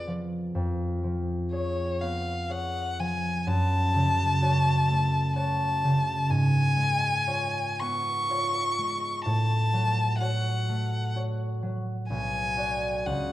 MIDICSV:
0, 0, Header, 1, 3, 480
1, 0, Start_track
1, 0, Key_signature, 3, "minor"
1, 0, Tempo, 970874
1, 276, Time_signature, 3, 2, 24, 8
1, 1720, Tempo, 940439
1, 3160, Tempo, 1003344
1, 4120, Tempo, 953895
1, 6644, End_track
2, 0, Start_track
2, 0, Title_t, "Violin"
2, 0, Program_c, 0, 40
2, 754, Note_on_c, 0, 73, 49
2, 996, Note_on_c, 0, 77, 50
2, 1003, Note_off_c, 0, 73, 0
2, 1241, Note_on_c, 0, 78, 56
2, 1248, Note_off_c, 0, 77, 0
2, 1482, Note_on_c, 0, 80, 59
2, 1489, Note_off_c, 0, 78, 0
2, 1720, Note_on_c, 0, 81, 74
2, 1728, Note_off_c, 0, 80, 0
2, 2683, Note_off_c, 0, 81, 0
2, 2686, Note_on_c, 0, 81, 63
2, 3162, Note_on_c, 0, 80, 80
2, 3169, Note_off_c, 0, 81, 0
2, 3879, Note_on_c, 0, 85, 67
2, 3886, Note_off_c, 0, 80, 0
2, 4594, Note_off_c, 0, 85, 0
2, 4597, Note_on_c, 0, 81, 72
2, 5061, Note_off_c, 0, 81, 0
2, 5073, Note_on_c, 0, 78, 61
2, 5543, Note_off_c, 0, 78, 0
2, 6028, Note_on_c, 0, 80, 72
2, 6511, Note_on_c, 0, 78, 52
2, 6518, Note_off_c, 0, 80, 0
2, 6644, Note_off_c, 0, 78, 0
2, 6644, End_track
3, 0, Start_track
3, 0, Title_t, "Harp"
3, 0, Program_c, 1, 46
3, 0, Note_on_c, 1, 41, 35
3, 0, Note_on_c, 1, 59, 31
3, 0, Note_on_c, 1, 68, 26
3, 0, Note_on_c, 1, 71, 29
3, 36, Note_on_c, 1, 53, 28
3, 265, Note_off_c, 1, 41, 0
3, 271, Note_on_c, 1, 41, 43
3, 506, Note_off_c, 1, 53, 0
3, 512, Note_on_c, 1, 53, 35
3, 748, Note_off_c, 1, 68, 0
3, 753, Note_on_c, 1, 68, 32
3, 755, Note_on_c, 1, 73, 33
3, 987, Note_off_c, 1, 59, 0
3, 993, Note_on_c, 1, 59, 32
3, 1228, Note_off_c, 1, 68, 0
3, 1230, Note_off_c, 1, 73, 0
3, 1233, Note_on_c, 1, 68, 32
3, 1236, Note_on_c, 1, 73, 33
3, 1473, Note_off_c, 1, 53, 0
3, 1479, Note_on_c, 1, 53, 33
3, 1714, Note_on_c, 1, 42, 45
3, 1730, Note_off_c, 1, 71, 0
3, 1736, Note_off_c, 1, 41, 0
3, 1736, Note_off_c, 1, 68, 0
3, 1738, Note_off_c, 1, 53, 0
3, 1738, Note_off_c, 1, 59, 0
3, 1958, Note_on_c, 1, 49, 36
3, 2195, Note_off_c, 1, 73, 0
3, 2199, Note_on_c, 1, 66, 34
3, 2201, Note_on_c, 1, 73, 35
3, 2440, Note_on_c, 1, 57, 38
3, 2671, Note_off_c, 1, 66, 0
3, 2674, Note_off_c, 1, 73, 0
3, 2677, Note_on_c, 1, 66, 31
3, 2680, Note_on_c, 1, 73, 35
3, 2919, Note_off_c, 1, 49, 0
3, 2926, Note_on_c, 1, 49, 37
3, 3158, Note_on_c, 1, 44, 45
3, 3175, Note_off_c, 1, 42, 0
3, 3175, Note_off_c, 1, 66, 0
3, 3176, Note_off_c, 1, 57, 0
3, 3179, Note_off_c, 1, 49, 0
3, 3383, Note_on_c, 1, 56, 39
3, 3619, Note_off_c, 1, 73, 0
3, 3625, Note_on_c, 1, 65, 37
3, 3626, Note_on_c, 1, 73, 42
3, 3880, Note_on_c, 1, 59, 39
3, 4109, Note_off_c, 1, 65, 0
3, 4114, Note_off_c, 1, 73, 0
3, 4115, Note_on_c, 1, 65, 35
3, 4120, Note_on_c, 1, 73, 38
3, 4354, Note_off_c, 1, 56, 0
3, 4360, Note_on_c, 1, 56, 38
3, 4598, Note_on_c, 1, 45, 51
3, 4615, Note_off_c, 1, 65, 0
3, 4616, Note_off_c, 1, 59, 0
3, 4617, Note_off_c, 1, 44, 0
3, 4617, Note_off_c, 1, 56, 0
3, 4838, Note_on_c, 1, 54, 38
3, 5074, Note_off_c, 1, 73, 0
3, 5077, Note_on_c, 1, 66, 40
3, 5080, Note_on_c, 1, 73, 40
3, 5318, Note_on_c, 1, 57, 38
3, 5549, Note_off_c, 1, 66, 0
3, 5550, Note_off_c, 1, 73, 0
3, 5554, Note_on_c, 1, 66, 34
3, 5557, Note_on_c, 1, 73, 37
3, 5784, Note_off_c, 1, 54, 0
3, 5790, Note_on_c, 1, 54, 37
3, 6030, Note_on_c, 1, 35, 50
3, 6047, Note_off_c, 1, 45, 0
3, 6049, Note_off_c, 1, 73, 0
3, 6259, Note_off_c, 1, 66, 0
3, 6264, Note_on_c, 1, 66, 37
3, 6269, Note_on_c, 1, 74, 39
3, 6513, Note_on_c, 1, 37, 43
3, 6533, Note_off_c, 1, 74, 0
3, 6534, Note_off_c, 1, 35, 0
3, 6644, Note_off_c, 1, 37, 0
3, 6644, Note_off_c, 1, 54, 0
3, 6644, Note_off_c, 1, 57, 0
3, 6644, Note_off_c, 1, 66, 0
3, 6644, End_track
0, 0, End_of_file